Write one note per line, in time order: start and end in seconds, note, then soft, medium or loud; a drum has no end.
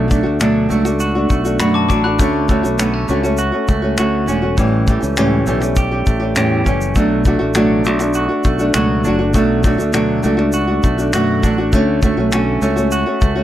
0.00 0.22 B1 medium
0.00 0.11 A3 medium
0.00 0.40 D4 medium
0.00 1.00 F#4 medium
0.08 0.25 F#3 medium
0.08 0.25 A3 medium
0.08 0.24 D4 medium
0.08 0.22 F#4 medium
0.08 kick medium
0.08 shaker soft
0.23 0.67 D2 medium
0.23 0.40 A3 soft
0.23 0.40 D4 soft
0.23 0.40 F#4 medium
0.40 0.70 B2 medium
0.40 0.68 F#3 medium
0.40 0.69 A3 medium
0.40 0.70 D4 medium
0.40 0.70 F#4 medium
0.40 finger snap loud
0.40 shaker medium
0.69 1.26 C#2 medium
0.69 0.85 F#3 medium
0.69 0.86 A3 medium
0.69 0.85 D4 medium
0.69 0.83 F#4 medium
0.69 shaker soft
0.85 1.17 A3 soft
0.85 1.15 D4 soft
0.85 1.14 F#4 medium
0.85 finger snap soft
0.85 shaker soft
1.00 1.59 F#4 medium
1.00 shaker medium
1.15 1.47 A3 soft
1.15 1.45 D4 soft
1.15 1.43 F#4 medium
1.30 1.58 B1 medium
1.30 2.18 A3 medium
1.30 kick medium
1.30 shaker soft
1.45 1.59 A3 soft
1.45 1.60 D4 soft
1.45 1.60 F#4 medium
1.45 shaker soft
1.59 1.88 F#2 medium
1.59 1.90 B2 medium
1.59 1.87 F#3 medium
1.59 1.88 A3 medium
1.59 1.89 D4 medium
1.59 1.90 F#4 medium
1.59 1.74 B5 medium
1.59 finger snap loud
1.59 shaker medium
1.74 1.88 A5 medium
1.74 1.87 D6 medium
1.88 2.17 A1 medium
1.88 2.04 F#3 medium
1.88 2.05 A3 medium
1.88 2.05 D4 medium
1.88 2.04 F#4 medium
1.88 2.04 A5 medium
1.88 2.03 D6 medium
1.88 kick medium
1.88 shaker soft
2.04 2.18 A3 soft
2.04 2.20 D4 soft
2.04 2.19 F#4 soft
2.04 2.33 B5 medium
2.04 2.33 F#6 medium
2.19 2.61 D2 loud
2.19 2.47 D3 medium
2.19 2.48 A3 medium
2.19 2.49 C#4 medium
2.19 2.50 F#4 medium
2.19 kick loud
2.19 shaker medium
2.48 2.64 D3 medium
2.48 2.64 A3 medium
2.48 2.63 C#4 medium
2.48 2.62 F#4 medium
2.48 kick medium
2.48 shaker soft
2.63 3.06 B1 medium
2.63 2.78 A3 soft
2.63 2.78 C#4 medium
2.63 2.79 F#4 medium
2.63 shaker medium
2.78 3.07 D3 medium
2.78 3.08 A3 medium
2.78 2.94 B3 medium
2.78 3.08 C#4 medium
2.78 3.09 F#4 medium
2.78 finger snap loud
2.78 shaker medium
2.94 4.27 C#4 soft
3.08 3.51 C#2 medium
3.08 3.24 D3 medium
3.08 3.24 A3 medium
3.08 3.24 C#4 medium
3.08 3.22 F#4 medium
3.08 shaker soft
3.23 3.54 A3 soft
3.23 3.52 C#4 medium
3.23 3.51 F#4 medium
3.23 shaker soft
3.38 3.97 F#4 medium
3.38 shaker medium
3.52 3.84 A3 soft
3.52 3.83 C#4 soft
3.52 3.81 F#4 soft
3.68 3.96 C#2 medium
3.68 4.87 A3 medium
3.68 kick medium
3.68 shaker soft
3.82 3.98 A3 soft
3.82 3.98 C#4 medium
3.82 3.98 F#4 soft
3.97 4.26 D2 medium
3.97 4.25 D3 medium
3.97 4.26 A3 medium
3.97 4.28 C#4 medium
3.97 4.28 F#4 medium
3.97 finger snap loud
3.97 shaker medium
4.26 4.56 E1 medium
4.26 4.42 D3 medium
4.26 4.43 A3 medium
4.26 4.42 C#4 medium
4.26 4.41 F#4 medium
4.26 shaker soft
4.42 4.58 A3 soft
4.42 4.57 C#4 soft
4.42 4.58 F#4 medium
4.57 4.99 A1 medium
4.57 4.87 A2 medium
4.57 4.85 E3 medium
4.57 4.86 G3 medium
4.57 4.87 C#4 medium
4.57 4.88 G4 medium
4.57 kick loud
4.57 shaker medium
4.87 5.02 E3 medium
4.87 5.03 G3 medium
4.87 5.47 A3 medium
4.87 5.01 C#4 medium
4.87 4.99 G4 medium
4.87 kick medium
4.87 shaker soft
5.00 5.44 C#2 medium
5.00 5.16 G3 soft
5.00 5.17 C#4 soft
5.00 5.17 G4 medium
5.00 shaker soft
5.16 5.47 A2 medium
5.16 5.45 E3 medium
5.16 5.46 G3 medium
5.16 5.47 C#4 medium
5.16 5.48 G4 medium
5.16 finger snap loud
5.16 shaker medium
5.46 6.03 B1 medium
5.46 5.62 E3 medium
5.46 5.62 G3 medium
5.46 6.06 A3 medium
5.46 5.61 C#4 medium
5.46 5.59 G4 medium
5.46 shaker soft
5.60 5.93 G3 soft
5.60 5.92 C#4 soft
5.60 5.90 G4 medium
5.60 finger snap soft
5.60 shaker soft
5.76 6.35 G4 medium
5.76 kick medium
5.76 shaker medium
5.91 6.22 G3 soft
5.91 6.20 C#4 soft
5.91 6.18 G4 medium
6.06 6.37 A1 medium
6.06 6.96 A3 medium
6.06 kick medium
6.06 shaker soft
6.20 6.35 G3 soft
6.20 6.35 C#4 soft
6.20 6.36 G4 medium
6.35 6.64 E2 medium
6.35 6.66 A2 medium
6.35 6.63 E3 medium
6.35 6.65 G3 medium
6.35 6.66 C#4 medium
6.35 6.67 G4 medium
6.35 finger snap loud
6.35 shaker medium
6.64 6.94 F#1 medium
6.64 6.95 E3 medium
6.64 6.96 G3 medium
6.64 6.96 C#4 medium
6.64 6.97 G4 medium
6.64 kick medium
6.64 shaker soft
6.81 shaker soft
6.95 7.37 B1 medium
6.95 7.26 B2 medium
6.95 7.23 F#3 medium
6.95 7.25 A3 medium
6.95 7.25 D4 medium
6.95 7.26 F#4 medium
6.95 kick loud
6.95 shaker medium
7.25 7.40 F#3 medium
7.25 7.41 A3 medium
7.25 7.40 D4 medium
7.25 7.38 F#4 medium
7.25 kick medium
7.25 shaker soft
7.39 7.86 A1 medium
7.39 7.55 A3 soft
7.39 7.55 D4 soft
7.39 7.55 F#4 medium
7.54 7.85 B2 medium
7.54 7.84 F#3 medium
7.54 7.84 A3 medium
7.54 7.85 D4 medium
7.54 7.86 F#4 medium
7.54 finger snap medium
7.54 shaker medium
7.85 8.27 B1 medium
7.85 8.00 F#3 medium
7.85 8.01 A3 medium
7.85 8.00 D4 medium
7.85 7.99 F#4 medium
7.85 shaker soft
7.99 8.30 A3 soft
7.99 8.29 D4 medium
7.99 8.27 F#4 medium
7.99 finger snap soft
7.99 shaker soft
8.14 8.75 F#4 medium
8.14 shaker medium
8.29 8.61 A3 soft
8.29 8.59 D4 soft
8.29 8.58 F#4 medium
8.44 8.73 B1 medium
8.44 9.35 A3 medium
8.44 kick medium
8.44 shaker soft
8.59 8.74 A3 soft
8.59 8.74 D4 medium
8.59 8.74 F#4 medium
8.59 shaker soft
8.74 9.07 C#2 medium
8.74 9.04 B2 medium
8.74 9.03 F#3 medium
8.74 9.04 A3 medium
8.74 9.05 D4 medium
8.74 9.05 F#4 medium
8.74 finger snap loud
8.74 shaker medium
9.04 9.35 F#1 medium
9.04 9.20 F#3 medium
9.04 9.20 A3 medium
9.04 9.19 D4 medium
9.04 9.17 F#4 medium
9.04 shaker soft
9.19 9.33 A3 soft
9.19 9.34 D4 soft
9.19 9.34 F#4 medium
9.33 9.76 B1 loud
9.33 9.64 B2 medium
9.33 9.62 F#3 medium
9.33 9.63 A3 medium
9.33 9.64 D4 medium
9.33 9.65 F#4 medium
9.33 kick loud
9.33 shaker medium
9.63 9.79 F#3 medium
9.63 9.79 A3 medium
9.63 9.79 D4 medium
9.63 9.77 F#4 medium
9.63 kick loud
9.63 shaker medium
9.78 10.20 D2 medium
9.78 9.92 A3 soft
9.78 9.93 D4 soft
9.78 9.93 F#4 medium
9.78 shaker soft
9.93 10.23 B2 medium
9.93 10.21 F#3 medium
9.93 10.22 A3 medium
9.93 10.24 D4 medium
9.93 10.24 F#4 medium
9.93 finger snap loud
9.93 shaker medium
10.22 10.80 C#2 medium
10.22 10.38 F#3 medium
10.22 10.39 A3 medium
10.22 10.38 D4 medium
10.22 10.36 F#4 medium
10.22 shaker soft
10.37 10.69 A3 medium
10.37 10.68 D4 medium
10.37 10.66 F#4 medium
10.37 finger snap soft
10.53 11.13 F#4 medium
10.53 shaker medium
10.67 10.99 A3 soft
10.67 10.98 D4 soft
10.67 10.97 F#4 medium
10.83 11.11 B1 medium
10.83 11.72 A3 medium
10.83 kick medium
10.83 shaker soft
10.98 11.13 A3 soft
10.98 11.14 D4 medium
10.98 11.13 F#4 medium
10.98 shaker soft
11.13 11.41 F#2 medium
11.13 11.43 B2 medium
11.13 11.41 F#3 medium
11.13 11.43 A3 medium
11.13 11.43 D4 medium
11.13 11.44 F#4 medium
11.13 finger snap loud
11.13 shaker medium
11.42 11.71 A1 medium
11.42 11.58 F#3 medium
11.42 11.59 A3 medium
11.42 11.59 D4 medium
11.42 11.57 F#4 medium
11.42 kick medium
11.42 shaker soft
11.58 11.73 A3 soft
11.58 11.74 D4 soft
11.58 11.73 F#4 medium
11.73 12.14 D2 loud
11.73 12.01 D3 medium
11.73 12.02 A3 medium
11.73 12.03 C#4 medium
11.73 12.04 F#4 medium
11.73 kick loud
11.73 shaker medium
12.02 12.18 D3 medium
12.02 12.18 A3 medium
12.02 12.18 C#4 medium
12.02 12.16 F#4 medium
12.02 kick medium
12.02 shaker medium
12.17 12.59 B1 medium
12.17 12.32 A3 medium
12.17 12.32 C#4 soft
12.17 12.32 F#4 medium
12.32 12.60 D3 medium
12.32 12.61 A3 medium
12.32 12.62 C#4 medium
12.32 12.63 F#4 medium
12.32 finger snap loud
12.32 shaker medium
12.61 13.03 C#2 medium
12.61 12.77 D3 medium
12.61 12.77 A3 medium
12.61 12.77 C#4 medium
12.61 12.75 F#4 medium
12.61 shaker soft
12.76 13.07 A3 medium
12.76 13.06 C#4 medium
12.76 13.05 F#4 medium
12.76 shaker medium
12.91 13.43 F#4 medium
12.91 shaker medium
13.06 13.37 A3 soft
13.06 13.36 C#4 soft
13.06 13.34 F#4 medium
13.21 13.43 C#2 medium
13.21 13.43 A3 medium
13.21 kick medium
13.21 shaker soft
13.35 13.43 A3 soft
13.35 13.43 C#4 medium
13.35 13.43 F#4 medium